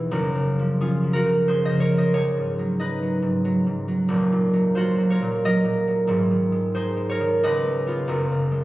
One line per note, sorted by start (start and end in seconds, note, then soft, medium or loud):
0.00 0.14 E1 medium
0.00 0.15 E2 medium
0.00 0.15 B2 soft
0.00 0.15 E3 soft
0.00 0.15 D#4 medium
0.00 0.80 G#4 medium
0.00 0.15 B4 medium
0.00 1.79 C#5 medium
0.00 0.15 D#5 medium
0.00 0.15 E5 medium
0.11 2.16 F#1 medium
0.11 2.16 F#2 medium
0.35 1.23 C#3 soft
0.59 1.02 F3 soft
0.81 4.71 C#4 soft
0.81 2.17 F4 medium
0.81 1.48 G#4 medium
1.03 1.47 F3 soft
1.13 4.76 F#4 medium
1.13 1.80 A#4 medium
1.24 1.69 C#3 medium
1.48 1.91 F3 medium
1.48 2.13 G#4 medium
1.48 1.66 C5 loud
1.65 1.98 C5 medium
1.65 1.93 D#5 medium
1.70 2.16 C#3 soft
1.80 2.16 A#4 medium
1.80 2.08 C#5 medium
1.92 2.16 F3 soft
1.98 2.17 C5 medium
1.98 2.25 D#5 medium
2.14 4.10 C#2 medium
2.14 4.10 G#4 medium
2.14 5.09 C#5 loud
2.37 3.21 G#2 soft
2.58 3.01 F#3 medium
2.80 6.70 D#4 soft
2.80 4.11 B4 medium
2.80 5.44 D#5 medium
3.02 3.43 F#3 soft
3.22 3.65 G#2 medium
3.45 3.87 F#3 medium
3.66 4.11 G#2 soft
3.88 4.52 F#3 medium
4.08 6.10 D#1 medium
4.08 6.11 D#2 medium
4.32 5.21 A#2 medium
4.53 4.96 F#3 medium
4.75 6.11 F4 medium
4.75 6.11 F#4 medium
4.75 5.32 C5 medium
4.97 5.44 F#3 medium
5.10 5.44 A#4 medium
5.10 6.11 C#5 medium
5.22 5.63 A#2 medium
5.45 5.86 F#3 medium
5.45 7.10 A#4 medium
5.45 7.43 D#5 loud
5.65 6.10 A#2 medium
5.88 6.11 F#3 medium
6.07 7.44 G#1 medium
6.07 7.44 G#2 medium
6.30 7.19 D#3 medium
6.52 6.95 G#3 medium
6.75 8.10 D#4 medium
6.75 8.64 G#4 medium
6.75 7.44 C5 medium
6.96 7.64 G#3 medium
7.09 7.46 A#4 medium
7.09 7.65 C#5 medium
7.21 7.45 D#3 medium
7.43 8.11 C#2 medium
7.43 8.12 B4 medium
7.43 8.11 D#5 loud
7.66 8.50 G#3 medium
7.87 8.10 B3 medium
7.87 8.64 F4 medium
8.08 8.64 F#1 medium
8.08 8.64 F#2 medium
8.31 8.64 C#3 soft
8.52 8.64 G#3 soft